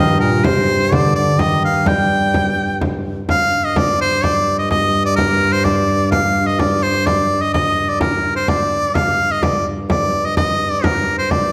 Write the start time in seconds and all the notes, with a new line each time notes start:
Already playing: G2 D#3 D#5
0.20 A#2 A#4
0.44 C3 C5, frame drum
0.91 D3 D5, frame drum
1.16 D3 D5
1.39 D#3 D#5, frame drum
1.65 F5
1.86 G3 G5, frame drum
2.34 frame drum
2.81 frame drum
3.05 frame drum
3.29 G2 F5, frame drum
3.65 D#5
3.76 D5, frame drum
4.00 C5, frame drum
4.24 D5, frame drum
4.59 D#5
4.71 D#5, frame drum
5.05 D5
5.16 A#4, frame drum
5.42 frame drum
5.52 C5
5.64 D5, frame drum
6.12 F5, frame drum
6.46 D#5
6.59 D5, frame drum
6.83 C5, frame drum
7.06 D5, frame drum
7.41 D#5
7.53 D#5, frame drum
7.89 D5
8.01 A#4, frame drum
8.25 frame drum
8.36 C5
8.48 D5, frame drum
8.72 frame drum
8.95 G2 F5, frame drum
9.31 D#5
9.43 D5, frame drum
9.66 frame drum
9.90 D5, frame drum
10.26 D#5
10.37 D#5, frame drum
10.72 D5
10.84 A#4, frame drum
11.08 frame drum
11.18 C5
11.31 D5, frame drum